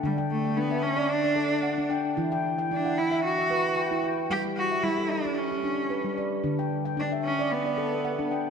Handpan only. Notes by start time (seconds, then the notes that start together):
Already playing: G5
0.03 D3 D4
0.18 G5
0.45 G5
0.57 D4
0.71 E5
0.97 D5
1.24 D5
1.36 A4
1.63 F#5
1.78 D4
1.90 G5
2.17 E3 E4
2.32 G5
2.58 G5
2.71 E4
2.85 F#5
3.11 E5
3.39 E5
3.50 B4
3.76 G5
3.91 E4
4.04 G5
4.30 G3
4.71 E5
4.84 G3
4.98 A4
5.25 G4
5.52 G4
5.64 D4
5.90 B4
6.04 G3
6.17 D5
6.44 D3 D4
6.59 G5
6.85 G5
6.97 D4
7.12 E5
7.39 D5
7.66 D5
7.78 A4
8.05 F#5
8.19 D4
8.31 G5